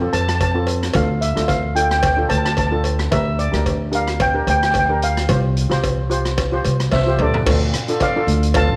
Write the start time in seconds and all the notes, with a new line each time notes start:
0.00 C4 F4 A4
0.13 F2 A5, closed hi-hat, cowbell
0.21 A5
0.28 A5, cross-stick, closed hi-hat
0.35 A5
0.41 A5, kick, closed hi-hat, cowbell
0.52 C4 F4 A4 A5
0.67 closed hi-hat, cowbell
0.83 cross-stick, closed hi-hat
0.93 D2 D4 F4 A4 F5, kick, closed hi-hat, cowbell
1.21 E5, closed hi-hat
1.35 D2 D4 F4 A4, cross-stick, closed hi-hat
1.48 F5, kick, closed hi-hat, cowbell
1.75 D4 F4 A4 G5, closed hi-hat
1.83 G5
1.91 G5, cross-stick, closed hi-hat
1.99 G5
2.03 G5, kick, closed hi-hat, cowbell
2.14 D4 F4 G5
2.18 A4
2.29 D2 A5, closed hi-hat, cowbell
2.38 A5
2.45 A5, cross-stick, closed hi-hat
2.53 A5
2.57 A5, kick, closed hi-hat, cowbell
2.67 D4 A5
2.71 F4 A4
2.84 closed hi-hat, cowbell
2.99 cross-stick, closed hi-hat
3.11 D2 D4 G4 A#4 E5, kick, closed hi-hat, cowbell
3.39 D5, closed hi-hat
3.52 D2 D4 G4 A#4, cross-stick, closed hi-hat
3.66 kick, closed hi-hat, cowbell
3.92 D4 G4 A#4 F5, closed hi-hat
4.07 cross-stick, closed hi-hat
4.20 G5, kick, closed hi-hat, cowbell
4.34 D4 G4 A#4
4.47 D2 G5, closed hi-hat, cowbell
4.57 G5
4.63 G5, cross-stick, closed hi-hat
4.71 G5, kick, closed hi-hat, cowbell
4.79 G5
4.86 D4 G4 G5
4.90 A#4
5.02 F5, closed hi-hat
5.17 cross-stick, closed hi-hat
5.29 C2 F4 G4 C5, kick, closed hi-hat, cowbell
5.57 closed hi-hat
5.69 C2 F4 G4 C5, cross-stick, closed hi-hat
5.84 kick, closed hi-hat, cowbell
6.10 F4 G4 C5, closed hi-hat
6.25 cross-stick, closed hi-hat
6.38 kick, closed hi-hat, cowbell
6.52 F4 G4 C5
6.65 C2, closed hi-hat, cowbell
6.80 cross-stick, closed hi-hat
6.91 C2 C5 E5, kick, snare, cowbell
7.06 F4 G4 C5
7.18 D2 A4 D5, mid tom, cowbell
7.34 floor tom
7.46 D2 D4 F4 A4, kick, crash, cowbell
7.73 cross-stick, closed hi-hat
7.88 D4 F4 A4, closed hi-hat
8.00 D5 F5, kick, closed hi-hat, cowbell
8.16 D4 F4 A4
8.27 D2, closed hi-hat
8.43 closed hi-hat
8.54 D4 F4 A4 F5 A5, kick, closed hi-hat, cowbell
8.69 A1